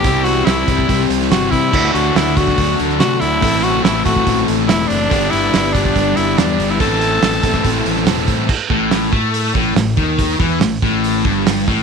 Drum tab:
CC |----------------|x---------------|----------------|----------------|
HH |o-o-o-o-o-o-o-o-|--o-o-o-o-o-o-o-|o-o-o-o-o-o-o-o-|o-o-o-o-o-o-o-o-|
SD |----o------oo---|----o--o---oo---|----o-------o---|----o-------o---|
BD |o-----ooo-----o-|o-----ooo-------|o-----ooo-------|o-----ooo-------|

CC |----------------|x---------------|----------------|
HH |o-o-o-o-o-o-o-o-|----o---o---o---|o---o---o---o---|
SD |----o--o---oo---|----o-------o---|----o-------o---|
BD |o-----ooo-----o-|o-o---o---o---o-|o-o---o---o---o-|